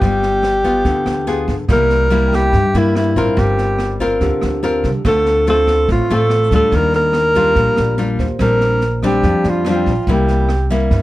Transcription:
Already playing: B3 F4 G4
0.01 G1 G3, kick, snare
0.22 snare
0.43 cross-stick, snare
0.64 B3 F4, kick, snare
0.85 D2 D3, kick, snare
1.06 D2, cross-stick, snare
1.27 B3 F4 G#4, snare
1.48 G1, kick, snare
1.68 C2 C3 G3 A#3 E4 A#4, kick, cross-stick, snare
1.90 snare
2.10 G3 A#3 E4 E5, snare
2.28 G5
2.32 G4, kick, cross-stick, snare
2.53 G2, kick, snare
2.74 G2 G3 A#3 E4, snare
2.95 E4, cross-stick, snare
3.16 A1 C4 F4 A#4, kick, snare
3.37 G1 G3 G4, kick, snare
3.58 snare
3.79 cross-stick, snare
4.00 C4 F4 A#4, kick, snare
4.21 D2 D3 G4, kick, snare
4.41 D2, cross-stick, snare
4.63 C4 F4 A#4, snare
4.84 C2, kick, snare
5.05 D2 D3 A3 C4 F4 A4, kick, cross-stick, snare
5.26 snare
5.47 A3 C4 F4 A4, snare
5.67 kick, cross-stick, snare
5.89 A1 A2 F4, kick, snare
6.09 A1 A3 C4 F4 A4, snare
6.30 cross-stick, snare
6.51 D2 G3 D4 F4, kick, snare
6.55 A4
6.72 D#2 D#3 A#4, kick, snare
6.76 A#4
6.93 A#4, snare
7.13 cross-stick, snare
7.35 G3 D4 F4 G4, kick, snare
7.51 A#4
7.55 A#1 A#2, kick, snare
7.76 A#1, cross-stick, snare
7.97 G3 D4 F4, snare
8.19 D#2 C5, kick, snare
8.39 A#1 A#2 G3 C4 D4 A#4, kick, cross-stick, snare
8.61 snare
8.81 snare
9.02 G3 C4 D4 G4, kick, cross-stick, snare
9.23 F2 F3, kick, snare
9.44 F2 D5, snare
9.49 F4
9.61 F5, cross-stick, snare
9.66 G3 C4 D4 F4
9.76 G5
9.86 A#1, kick, snare
10.07 C2 C3 G3 A#3 E4, kick, snare
10.12 G4
10.28 snare
10.49 cross-stick, snare
10.70 G3 A#3 E4 E5, kick, snare
10.91 G2, kick, snare

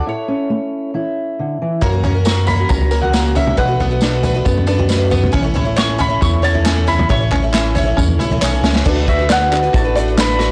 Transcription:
Already playing: A4
0.06 A2 E4 C#5
0.28 C#4
0.50 A3
0.94 E3 E4
1.39 D3
1.62 E3
1.81 F#2 F#3 A#3 C#4 F#4 A#4, kick, floor tom
1.92 C#4 F#4 A#4
2.03 F#2 A#3 C#4 F#4 A#4, floor tom
2.14 C#4 F#4 A#4
2.25 F#3 A#3 C#4 F#4 A#4 C#6, snare, tambourine
2.47 A#3 C#4 F#4 A#4 B5, floor tom, tambourine
2.59 C#4 F#4 A#4
2.69 C#2 C#4 A#5, kick, floor tom, tambourine
2.81 floor tom
2.91 A#3 C#4 F#4 A#4, tambourine
3.02 C#4 F#4 A#4 F#5, floor tom
3.13 F#3 A#3 C#4 F#4 A#4, snare, tambourine
3.35 A#3 C#4 F#4 A#4 E5, floor tom, tambourine
3.47 floor tom, mid tom
3.57 B1 B2 F#3 A3 D4 F#4 B4 F#5, kick, floor tom
3.68 A3 D4 F#4 B4
3.80 B1 A3 B3 D4 F#4 B4, floor tom
3.90 A3 D4 F#4 B4
4.01 B2 F#3 A3 D4 F#4 B4, snare, tambourine
4.23 A3 D4 F#4 B4, floor tom, tambourine
4.34 A3 D4 F#4 B4
4.45 F#2 B3, kick, floor tom, tambourine
4.57 floor tom
4.67 A3 D4 F#4 B4, tambourine
4.78 A3 D4 F#4 B4, floor tom
4.89 B2 F#3 A3 D4 F#4 B4, snare, tambourine
5.10 A3 B3 D4 F#4 B4, floor tom, tambourine
5.23 floor tom, mid tom
5.32 A1 A2 E3 A3 C#4 E4 C#5, kick, floor tom
5.42 A3 C#4 E4 C#5
5.54 A1 A3 C#4 E4 C#5, floor tom
5.65 A3 C#4 E4 C#5
5.76 A2 E3 A3 C#4 E4 C#5 C#6, snare, clap, tambourine
5.98 A3 C#4 E4 C#5 B5, floor tom, tambourine
6.08 A3 C#4 E4 C#5
6.21 E2 E4 C#6, kick, floor tom, tambourine
6.33 floor tom
6.42 A3 C#4 E4 C#5 A5, tambourine
6.53 A3 C#4 E4 C#5, floor tom
6.65 A2 E3 A3 C#4 E4 C#5, snare, clap, tambourine
6.87 A3 C#4 E4 C#5 B5, floor tom, tambourine
6.99 floor tom, mid tom
7.09 A1 A2 E3 A3 C#4 E4 C#5 C#6, kick, floor tom, tambourine
7.20 A3 C#4 E4 C#5
7.31 A1 A3 C#4 E4 C#5, clap, floor tom, tambourine
7.42 A3 C#4 E4 C#5
7.53 A2 E3 A3 C#4 E4 C#5, snare, clap, tambourine
7.75 A3 C#4 E4 C#5, floor tom, tambourine
7.85 A3 C#4 E4 C#5
7.97 E2 C#4, kick, floor tom, tambourine
8.09 floor tom
8.19 A1 A3 C#4 E4 C#5, mid tom, tambourine
8.31 A3 C#4 E4 C#5, floor tom
8.41 B1 A2 E3 A3 C#4 E4 C#5, snare, clap, tambourine
8.63 C#2 A3 C#4 E4 C#5, snare, tambourine
8.75 snare
8.85 D2 D3 A3 D4 F#4 B4 D5, kick, crash
9.07 A3 D4 F#4 B4 D5 E5, kick, closed hi-hat
9.18 D4 F#4 B4, closed hi-hat
9.29 D3 A3 D4 F#4 B4 D5 F#5, snare, clap, closed hi-hat, tambourine
9.52 A3 D4 F#4 B4 D5, clap, closed hi-hat
9.63 D4 F#4 B4, closed hi-hat
9.73 A1 A3 D4 F#4 B4 D5 A5, kick, closed hi-hat
9.84 D4 F#4 B4
9.95 A3 D4 F#4 B4 D5, closed hi-hat
10.08 closed hi-hat
10.17 D3 A3 D4 F#4 B4 D5 B5, snare, clap, closed hi-hat, tambourine
10.29 closed hi-hat
10.39 A3 D4 F#4 B4 D5, snare, closed hi-hat

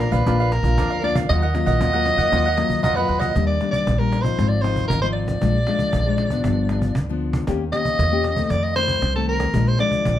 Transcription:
Already playing: F2 F4 A#4 D5 F5
0.00 A#4, cajon slap
0.11 A#1 A#3 D4 F4 A#4 B4 D5 F5, cajon bass
0.26 A#1 A#2 A#3 D4 F4 A#4 D5 F5, cajon bass, cajon slap
0.40 A#4 D5 F5
0.52 A#4, muted cavaquinho stroke, cajon slap
0.63 A#1 A#3 D4 F4, cajon bass
0.78 D2 F2 D4 A#4 D5 F5, cajon bass, cajon slap
0.90 A#4 D5 F5
1.03 A#3 D4 F4 A#4 D5 F5, cajon slap
1.15 A#4 D5 F5, cajon bass, cajon slap
1.28 D#2 D#3 F#3 A#3 F4 A#4 D#5 F#5, cajon bass, cajon slap
1.42 A#4 D#5 F#5, cajon slap
1.54 F#3 A#3 F4, muted cavaquinho stroke, cajon slap
1.66 A#1 A#4 D#5 F#5, cajon bass
1.80 D#2 A#2 F4 A#4 D#5 F#5, cajon bass, cajon slap
1.93 F#3 A#3 F4 A#4 D#5 F#5, cajon slap
2.06 cajon slap
2.17 D#2 A#4 D#5 F#5, cajon bass
2.32 D#2 D#3 F#3 A#3 F4 A#4 D#5 F#5, cajon bass, cajon slap
2.46 A#4 D#5 F#5
2.57 F#3 A#3 F4, muted cavaquinho stroke, cajon slap
2.68 D#2, cajon bass
2.83 F2 A#2 F4 A#4 D#5 F#5, cajon bass, cajon slap
2.96 F#3 A#3 F4 A#4 B4 D#5 F#5
3.07 D#2 F4 A#4 D#5 F#5, cajon slap
3.20 A#4 D#5 F#5, cajon bass, cajon slap
3.35 D#2 D#3 G3 A#3 D4, cajon bass, cajon slap
3.47 D5
3.60 G3 A#3 D4, cajon slap
3.71 D5, cajon bass
3.87 A#1 A#2, cajon bass, cajon slap
3.99 G3 A#3 D4 A#4
4.12 cajon slap
4.22 F3 C4 D#4 C5, cajon bass
4.38 G#1 G#2, cajon bass, cajon slap
4.48 D5
4.61 F3 C4 D#4 C5, cajon slap
4.76 cajon bass
4.88 G#1 D#3 A#4, cajon bass, cajon slap
5.02 F3 C4 D#4 C5
5.13 D5, cajon slap
5.28 cajon bass, cajon slap
5.41 A#1 A#2 F3 G#3 D4, cajon bass, cajon slap
5.67 F3 G#3 D4, cajon slap
5.79 cajon bass
5.93 A#1 F2, cajon bass, cajon slap
6.06 F3 G#3 D4
6.18 cajon slap
6.30 F3 B3 D4, cajon bass
6.44 G1 G2, cajon bass, cajon slap
6.69 F3 B3 D4, cajon slap
6.82 cajon bass
6.95 D2 D3, cajon bass, cajon slap
7.09 F3 B3 D4
7.21 cajon slap
7.33 cajon bass, cajon slap
7.47 D#2 D#3 A#3 C#4 G4, cajon bass, cajon slap
7.72 A#3 C#4 G4 D#5, cajon slap
7.85 cajon bass
7.98 E2 A#2, cajon bass, cajon slap
8.12 A#3 C#4 G4
8.24 cajon slap
8.36 D#3 A3 C4, cajon bass
8.50 F2 D5, cajon bass, cajon slap
8.64 D#5
8.76 D#3 A3 C4 C5, cajon slap
8.88 cajon bass
9.02 C2 C3, cajon bass, cajon slap
9.15 D#3 A3 C4 A4
9.28 A#4, cajon slap
9.40 cajon bass, cajon slap
9.53 A#1 A#2 F3 G#3 D4, cajon bass, cajon slap
9.68 C5
9.79 F3 G#3 D4 D5, cajon slap
9.91 cajon bass
10.05 A#1 F2, cajon bass, cajon slap

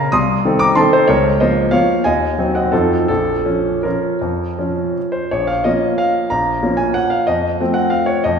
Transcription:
Already playing: A#4 F5 A#5
0.12 C2 C6 D#6
0.45 D#3 C4 A4
0.59 A#5 D6
0.75 D#3 C4 A4 A5 C6
0.93 A4 C5
1.08 C#2 A#4 C#5
1.40 F3 A#3 F4 C5 D#5
1.71 F3 A#3 F4 C#5 F5
2.04 D#2 D#5 G#5
2.38 F#3 C4 D#4
2.55 D#5 F#5
2.72 F2 F3 C4 D#4 F4 A4
3.08 A#1 F4 A4
3.45 F3 C#4
3.83 F3 C#4 F4 A#4
4.21 F2
4.59 F3 C#4
5.12 C5
5.31 A#1 C#5
5.47 F5
5.64 F3 A#3 C#4 D#5
5.98 F5
6.30 A#1 A#5
6.63 F3 A#3 C#4
6.77 G#5
6.94 F#5
7.10 F5
7.27 F2 D#5
7.61 F3 A3 C4
7.74 F#5
7.90 F5
8.06 C#5
8.24 F2 D#5

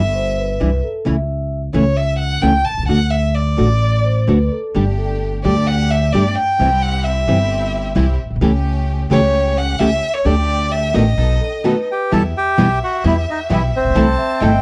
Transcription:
Already playing: G1 E5
0.15 C5
0.38 B4
0.60 C2 C3 E3 G3 D4 E4
0.83 A4
1.05 C#2 C#3 E3 A3 C#4 E4 E5
1.73 C#2 C#3 E3 A3 C#4 E4 C#5
1.97 E5
2.19 F#5
2.41 C#2 C#3 E3 A3 C#4 E4 G5
2.65 A5
2.72 B1
2.78 C2
2.83 C#2
2.88 D2 D3 A3 D4 F#4 F#5
3.11 E5
3.34 D5
3.57 A1 D3 A3 D4 F#4
3.82 D5
4.04 C5
4.27 D2 D3 A3 D4 F#4 B4
4.52 A4
4.75 G1 D3 G3 A3 D4 G4
4.98 A4
5.44 D2 D3 G3 A3 D4 G4 D5
5.67 F#5
5.90 E5
6.13 G1 D3 G3 A3 D4 G4 D5
6.36 G5
6.59 C2 C3 E3 G3 C4 E4 G4
6.82 F#5
7.04 E5
7.27 G1 C3 E3 G3 C4 E4 G4
7.95 C2 C3 E3 G3 C4 E4 G4
8.25 A#1
8.30 B1
8.36 C2
8.41 C#2 C#3 E3 A3 C#4 G4
9.10 C#2 C#3 E3 A3 C#4 G4 C#5
9.57 F#5
9.79 C#2 C#3 E3 A3 C#4 G4 E5
10.14 C#5
10.24 D2 D3 A3 D4 G4 D5
10.72 E5
10.93 A1 B2 D#3 A3 B3 D4 F#4 G4 D#5
11.17 B1 B3 D#4 A4
11.40 A4
11.64 B2 D#3 A3 B3 D#4 F#4 A4 B4
11.91 G4 G5
12.12 E2 B2 E3 G3 B3 E4 G4 A4 E5 A5
12.37 G4 G5
12.58 B1 B2 E3 G3 B3 E4 G4
12.84 F#4 F#5
13.04 E2 B2 E3 G3 B3 E4 G4 E5
13.30 D#4 D#5
13.50 B1 B2 E3 G3 B3 E4 G4 E5
13.76 A1 C4 C5
13.84 A#1
13.90 B1
13.95 C2 C3 E3 A3 C4 E4 A4 A5
14.18 E5
14.40 G1 C3 E3 A3 C4 E4 A4 D#5 G5
14.52 E5

